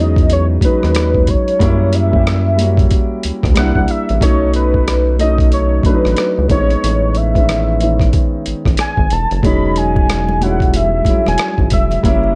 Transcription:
Already playing: E2 F#3 G#3
0.00 C#4 D#4 D#5
0.16 kick, closed hi-hat
0.30 C#5, closed hi-hat
0.61 D#2 F#3 G#3 C#4 B4, kick, closed hi-hat
0.66 D#4
0.83 D#2, cross-stick, closed hi-hat
0.95 cross-stick, closed hi-hat
1.15 kick
1.27 C#5, kick, closed hi-hat
1.48 closed hi-hat
1.59 F#2 G3 A#3 C#4, kick, closed hi-hat
1.64 E4
1.93 E5, closed hi-hat
2.12 G3 A#3 C#4, kick
2.16 G4
2.27 cross-stick, closed hi-hat
2.57 G3 A#3 C#4, closed hi-hat
2.61 F#4
2.77 kick, closed hi-hat
2.91 kick, closed hi-hat
3.23 D2, closed hi-hat
3.43 D2, kick, cross-stick, closed hi-hat
3.54 C2 G3 A#3 D4 F#5, cross-stick, closed hi-hat
3.59 E4
3.75 C2, kick
3.88 E5, closed hi-hat
4.09 A1, closed hi-hat
4.20 B1 F#3 A3 C#4 C#5, kick, closed hi-hat
4.25 D#4
4.54 B4, closed hi-hat
4.74 kick
4.88 cross-stick, closed hi-hat
5.18 F#3 A3 C#4 D#5, closed hi-hat
5.23 D#4
5.38 kick, closed hi-hat
5.52 C#5, closed hi-hat
5.83 A1 F#3 A3 C#4 B4, kick, closed hi-hat
5.88 D4
5.94 D#4
6.05 A1, cross-stick, closed hi-hat
6.17 cross-stick, closed hi-hat
6.38 C#2
6.48 A1 G#3 B3 C4 C#5, kick, closed hi-hat
6.52 D#4
6.58 C#4
6.70 closed hi-hat
6.84 A1, closed hi-hat
7.15 E5, closed hi-hat
7.34 G#3 B3 C#4, kick, closed hi-hat
7.38 D#3
7.49 cross-stick, closed hi-hat
7.80 G#3 B3 C#4, closed hi-hat
7.84 D#3
8.00 kick, cross-stick, closed hi-hat
8.13 kick, closed hi-hat
8.46 A1, closed hi-hat
8.65 A1, kick, cross-stick, closed hi-hat
8.77 G#5, cross-stick, closed hi-hat
8.97 G#1, kick
9.10 E1 A5, closed hi-hat
9.31 F#1, closed hi-hat
9.43 E1 F#3 G#3 C#4 D#4 B5, kick, closed hi-hat
9.76 G#5, closed hi-hat
9.96 kick, high conga
10.10 cross-stick, closed hi-hat, muted conga
10.29 muted conga, high conga
10.40 F#3 G3 C#4 F#5, closed hi-hat, low conga
10.44 G#3 E4
10.60 kick, closed hi-hat
10.74 E5, closed hi-hat, muted conga, high conga
11.05 E1 F#3 G#3 C#4, kick, closed hi-hat, high conga
11.10 E4
11.26 E1 G#5, cross-stick, closed hi-hat, high conga
11.38 cross-stick, closed hi-hat, muted conga
11.58 G#1, kick, muted conga
11.70 E1 E5, kick, closed hi-hat, high conga, low conga
11.91 closed hi-hat, low conga
12.03 F#1 G3 A#3 C#4 E5, kick, closed hi-hat, muted conga
12.07 E4
12.24 muted conga

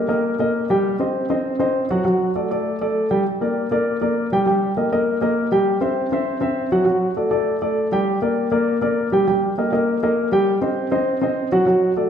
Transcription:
0.08 A#3 A#4 D#5
0.39 A#3 A#4 D#5
0.70 G3 G4 G5
0.99 C4 C5 D#5
1.30 C4 C5 D#5
1.59 C4 C5 D#5
1.90 F#3 F#4 F#5
2.04 F#3 F#4 F#5
2.35 A3 A4 D5
2.50 A3 A4 D5
2.81 A3 A4 D5
3.11 G3 G4 G5
3.41 A#3 A#4 D5
3.71 A#3 A#4 D5
4.01 A#3 A#4 D5
4.32 G3 G4 G5
4.46 G3 G4 G5
4.77 A#3 A#4 D#5
4.92 A#3 A#4 D#5
5.21 A#3 A#4 D#5
5.52 G3 G4 G5
5.81 C4 C5 E5
6.12 C4 C5 E5
6.41 C4 C5 E5
6.72 F#3 F#4 F#5
6.84 F#3 F#4 F#5
7.16 A3 A4 D5
7.31 A3 A4 D5
7.62 A3 A4 D5
7.92 G3 G4 G5
8.22 A#3 A#4 D5
8.52 A#3 A#4 D5
8.81 A#3 A#4 D5
9.12 G3 G4 G5
9.27 G3 G4 G5
9.58 A#3 A#4 D#5
9.72 A#3 A#4 D#5
10.03 A#3 A#4 D#5
10.32 G3 G4 G5
10.61 C4 C5 D#5
10.91 C4 C5 D#5
11.21 C4 C5 D#5
11.52 F#3 F#4 F#5
11.65 F#3 F#4 F#5
11.96 A3 A4 D5

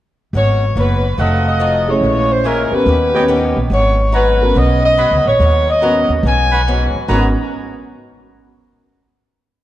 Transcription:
0.33 G#1 G#2 F#3 B3 C#4 C#5
0.75 F#1 G#2 F#3 B3 C#4 B4
1.17 F1 F3 A3 D#4 F#4 A4 D#5 F5 F#5
1.47 D#5
1.60 F3 A3 D#4 F#4
1.88 A3 C#4 E4 G#4 C#5
2.01 A#1 A#2 E3 G#3 C#4
2.31 C5
2.44 A#2 E3 G#3 C#4 A#4 C#5 E5 G#5
2.72 B3 C#4 G4 A#4 B4, muted upright bass stroke
2.86 D#2 D#3 B3 C#4 G4
3.14 B3 C#4 G4 B4 C#5 D#5 G5
3.28 D#3 B3 C#4 G4
3.56 A#1
3.70 G#1 G#2 F#3 B3 C#4 C#5
4.12 G#2 F#3 B3 C#4 B4 C#5 F#5 A#5
4.42 B3 C#4 F#4 A#4
4.54 B1 G#2 F#3 B3 C#4 D#5
4.85 D#5
4.97 G#2 F#3 B3 C#4 B4 C#5 F#5 B5
5.11 C#2
5.26 A#1 C#5
5.40 D#2 G#2 F#3 B3 C#4
5.69 D#5
5.82 G#2 F#3 B3 C#4 F#4 A#4 B4 C#5 F#5 A#5
6.09 D#2
6.23 B1 G#2 F#3 B3 G#5
6.27 C#4
6.51 B4 C#5 F#5 B5
6.68 G#2 F#3 B3 C#4
6.93 muted upright bass stroke
7.08 G#1 G#2 F#3 B3 C#4 D#4 F#4 A#4 B4 C#5 D#5 F#5 G#5 A#5

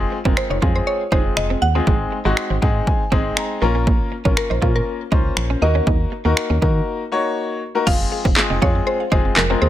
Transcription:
Already playing: G#3 C4 F4 G#4
0.12 muted clean electric guitar stroke
0.25 F1 G#3 C4 F4 A#4, kick
0.37 C5, finger snap, muted clean electric guitar stroke
0.50 F1 D#4 C#5
0.62 F2 G#3 C4 F4 G#4, kick
0.76 C5
0.87 C#5
1.12 F1 G#3 C4 D#4 F4 G#4 C5, kick
1.37 F1 D#5, finger snap
1.50 C4
1.62 D#2 F#5, muted clean electric guitar stroke
1.75 G#3 C4 F4 G#4
1.87 G#1 G#3 C4, kick
2.12 muted clean electric guitar stroke
2.25 G#1 G#3 C4 D#4 F#4
2.37 finger snap, muted clean electric guitar stroke
2.50 G#1 C4
2.62 G#2 G#3 C4 D#4 G#4 F#5, kick
2.87 G#5, kick
3.12 G#1 G#3 C4 D#4 G#4, kick
3.37 A#5, finger snap, muted clean electric guitar stroke
3.62 A#1 A#3 C#4 F4 A#4
3.75 C#4
3.87 A#3, kick
4.12 muted clean electric guitar stroke
4.25 A#1 A#3 C#4 F4 A#4, kick
4.37 A#4, finger snap, muted clean electric guitar stroke
4.50 A#1 D#4 C5
4.62 A#2 A#3 C#4 F4 A#4, kick
4.76 A#4
5.12 C#2 A#3 C#4 D#4 F4 C5, kick
5.37 A#1, finger snap
5.50 C#4
5.62 D#2 A#3 D#4 F#4 A#4 D#5, muted clean electric guitar stroke
5.75 C#4
5.87 D#2 D#4, kick
6.12 muted clean electric guitar stroke
6.25 D#2 A#3 D#4 F#4 A#4
6.37 finger snap, muted clean electric guitar stroke
6.50 D#2 C#4
6.62 D#3 A#3 D#4 F#4 A#4, kick
7.12 A#3 D#4 F#4 C#5
7.75 A#3 D#4 F#4 A#4
7.87 F1 F3 G#3 C4 F4 G#4 F5, kick, crash
8.12 G#4, muted clean electric guitar stroke
8.25 F1 C4 F5, kick
8.36 G#3 C4 F4 G#4, muted clean electric guitar stroke, snare, clap
8.50 F1 C4 D#4
8.62 F2 F3 G#3 C4 F4 G#4 C#5, kick
8.75 C4
8.87 G#4 C5
9.00 F5
9.12 F1 G#3 C4 D#4 F4 G#4 C5, kick
9.25 C4
9.36 F1 F3 A#4, snare, clap
9.50 G#3 C4 F4 A#4
9.62 D#2 G#4 C5, muted clean electric guitar stroke

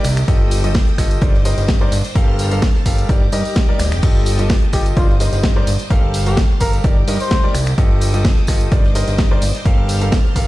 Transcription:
Already playing: G4 D#5 D6
0.04 C2, finger snap, closed hi-hat, open hi-hat, tambourine
0.17 finger snap, closed hi-hat, tambourine
0.28 G1 G3 F4 G4 A4 D#5 G5 D#6, kick, closed hi-hat
0.51 closed hi-hat, open hi-hat, tambourine
0.64 G3 F4 G4 A4 D#5, closed hi-hat, tambourine
0.74 kick, snare, closed hi-hat, open hi-hat, tambourine
0.87 closed hi-hat
0.98 G1 F4 G4 A4 D#5, finger snap, kick, snare, closed hi-hat, open hi-hat, tambourine
1.11 closed hi-hat, tambourine
1.21 G1 G3 D#4 A#4 C5 D5 D#5 D6, kick, closed hi-hat, tambourine
1.34 snare
1.45 G3 D#4 A#4 C5 D#5, snare, closed hi-hat, open hi-hat, tambourine
1.58 G1, snare, closed hi-hat, tambourine
1.68 kick, snare, closed hi-hat, tambourine
1.81 G3 D#4 A#4 C5 D5
1.92 G1, snare, closed hi-hat, open hi-hat, tambourine
2.04 snare, closed hi-hat, tambourine
2.15 G1 G3 G4 A4 A#4 F5 A5 F6, kick, closed hi-hat
2.39 snare, closed hi-hat, open hi-hat, tambourine
2.51 G3 G4 A4 A#4 F5, closed hi-hat, tambourine
2.62 kick, snare, closed hi-hat, tambourine
2.75 snare
2.86 G1 G3 G4 A4 A#4 F5, kick, closed hi-hat, open hi-hat, tambourine
2.98 closed hi-hat, tambourine
3.09 G1 G3 D#4 G4 A#4 D5 D#5 D6, kick, closed hi-hat, tambourine
3.32 G2 G3 D#4 G4 A#4 D#5, closed hi-hat, open hi-hat, tambourine
3.45 open hi-hat, tambourine
3.56 kick, snare, closed hi-hat, tambourine
3.69 G3 D#4 G4 A#4 D5
3.79 D1, finger snap, snare, closed hi-hat, open hi-hat, tambourine
3.92 F1, finger snap, snare, closed hi-hat, tambourine
4.02 G1 G3 F4 G4 A4 D#5 A5, kick, closed hi-hat, crash, tambourine
4.26 closed hi-hat, open hi-hat, tambourine
4.39 G3 F4 G4 A4 D#5, closed hi-hat, tambourine
4.50 kick, snare, closed hi-hat, open hi-hat
4.62 closed hi-hat
4.73 G1 F4 G4 A4 D#5, finger snap, kick, snare, closed hi-hat, open hi-hat, tambourine
4.86 closed hi-hat, tambourine
4.96 G1 G3 D#4 F4 A#4 C5 D5 D6, kick, closed hi-hat, tambourine
5.09 F4, snare
5.20 G3 D#4 A#4 C5 D#5, snare, closed hi-hat, open hi-hat, tambourine
5.33 G1, snare, closed hi-hat, tambourine
5.43 kick, snare, closed hi-hat, tambourine
5.56 G3 D#4 A#4 C5 D5
5.67 G1, snare, closed hi-hat, open hi-hat, tambourine
5.79 snare, closed hi-hat, tambourine
5.90 G1 G3 G4 A4 A#4 F5 A5 F6, kick, closed hi-hat, tambourine
6.14 snare, closed hi-hat, open hi-hat, tambourine
6.26 G3 G4 A4 A#4 F5, closed hi-hat, tambourine
6.37 kick, snare, closed hi-hat, tambourine
6.50 snare
6.60 G1 G3 G4 A4 A#4 F5, kick, closed hi-hat, open hi-hat, tambourine
6.73 closed hi-hat, tambourine
6.84 G1 G3 D#4 G4 A#4 D5 D#5 D6, kick, closed hi-hat, tambourine
7.07 G2 G3 D#4 G4 A#4 D#5, closed hi-hat, open hi-hat, tambourine
7.20 C5, open hi-hat, tambourine
7.31 D2, kick, snare, closed hi-hat
7.44 G3 D#4 G4 A#4 D5
7.55 C2, finger snap, closed hi-hat, open hi-hat, tambourine
7.66 finger snap, closed hi-hat, tambourine
7.78 G1 G3 F4 G4 A4 D#5 G5 D#6, kick, closed hi-hat
8.01 closed hi-hat, open hi-hat, tambourine
8.14 G3 F4 G4 A4 D#5, closed hi-hat, tambourine
8.25 kick, snare, closed hi-hat, open hi-hat, tambourine
8.38 closed hi-hat
8.47 G1 F4 G4 A4 D#5, finger snap, kick, snare, closed hi-hat, open hi-hat, tambourine
8.61 closed hi-hat, tambourine
8.71 G1 G3 D#4 A#4 C5 D5 D#5 D6, kick, closed hi-hat, tambourine
8.83 snare
8.95 G3 D#4 A#4 C5 D#5, snare, closed hi-hat, open hi-hat, tambourine
9.07 G1, snare, closed hi-hat, tambourine
9.18 kick, snare, closed hi-hat, tambourine
9.31 G3 D#4 A#4 C5 D5
9.42 G1, snare, closed hi-hat, open hi-hat, tambourine
9.55 snare, closed hi-hat, tambourine
9.65 G1 G3 G4 A4 A#4 F5 A5 F6, kick, closed hi-hat
9.88 snare, closed hi-hat, open hi-hat, tambourine
10.01 G3 G4 A4 A#4 F5, closed hi-hat, tambourine
10.12 kick, snare, closed hi-hat, tambourine
10.25 snare
10.35 G1 G3 G4 A4 A#4 F5, kick, closed hi-hat, open hi-hat, tambourine

